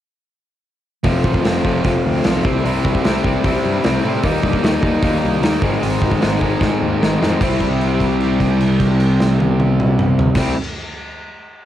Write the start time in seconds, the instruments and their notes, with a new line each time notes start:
1.04 picked electric bass F1, distorted electric guitar F2 C3, overdriven electric guitar F3 A3 C4 F4, kick, open hi-hat
1.24 picked electric bass A1, kick
1.34 kick
1.44 picked electric bass F1, distorted electric guitar F2 C3, overdriven electric guitar F3 A3 C4 F4, snare, open hi-hat
1.63 picked electric bass F1, distorted electric guitar F2 C3, overdriven electric guitar F3 A3 C4 F4, kick
1.84 picked electric bass F1, distorted electric guitar F2 C3, overdriven electric guitar F3 A3 C4 F4, kick, open hi-hat
2.05 picked electric bass D2
2.24 picked electric bass B1, distorted electric guitar F2 C3, overdriven electric guitar F3 A3 C4 F4, snare, open hi-hat
2.45 picked electric bass C2, overdriven electric guitar C3 G3 C4 E4, kick
2.65 picked electric bass C2, overdriven electric guitar C3 G3 C4 E4, open hi-hat
2.85 picked electric bass C2, kick
2.95 kick
3.04 picked electric bass C2, overdriven electric guitar C3 G3 C4 E4, snare, open hi-hat
3.24 picked electric bass C2, overdriven electric guitar C3 G3 C4 E4, kick
3.44 picked electric bass C2, overdriven electric guitar C3 G3 C4 E4, kick, open hi-hat
3.66 picked electric bass G2
3.84 picked electric bass C2, overdriven electric guitar C3 G3 C4 E4, snare, open hi-hat
4.04 picked electric bass A2, overdriven electric guitar C3 G3 C4 E4
4.23 picked electric bass D#2, overdriven electric guitar D#3 G3 A#3 D#4, kick, open hi-hat
4.43 picked electric bass G2, kick
4.53 kick
4.63 picked electric bass D#2, overdriven electric guitar D#3 G3 A#3 D#4, snare, open hi-hat
4.83 picked electric bass D#2, overdriven electric guitar D#3 G3 A#3 D#4, kick
5.03 picked electric bass D#2, overdriven electric guitar D#3 G3 A#3 D#4, kick, open hi-hat
5.24 picked electric bass C2
5.42 picked electric bass D#2, overdriven electric guitar D#3 G3 A#3 D#4, snare, open hi-hat
5.61 picked electric bass G#1, overdriven electric guitar G#2 D#3 G#3 C4 D#4, kick
5.82 picked electric bass G#1, overdriven electric guitar G#2 D#3 G#3 C4 D#4, open hi-hat
6.02 picked electric bass G#1, kick
6.12 kick
6.21 picked electric bass G#1, overdriven electric guitar G#2 D#3 G#3 C4 D#4, snare, open hi-hat
6.41 picked electric bass G#1, overdriven electric guitar G#2 D#3 G#3 C4 D#4, kick
6.60 picked electric bass G#1, overdriven electric guitar G#2 D#3 G#3 C4 D#4, kick, snare
6.82 picked electric bass D#2
7.01 picked electric bass G#1, overdriven electric guitar G#2 D#3 G#3 C4 D#4, snare
7.20 picked electric bass F2, overdriven electric guitar G#2 D#3 G#3 C4 D#4, snare
7.40 picked electric bass C2, overdriven electric guitar C3 G3 C4 E4, kick, crash
7.60 kick, crash
7.81 crash
8.00 kick, crash
8.20 crash
8.40 kick, crash
8.61 crash
8.80 kick, crash
9.00 crash
9.20 snare
9.40 high tom
9.60 high tom
9.80 mid tom
9.99 mid tom
10.19 floor tom
10.35 picked electric bass C2, overdriven electric guitar C3 G3 C4, kick, snare, crash
10.39 overdriven electric guitar E4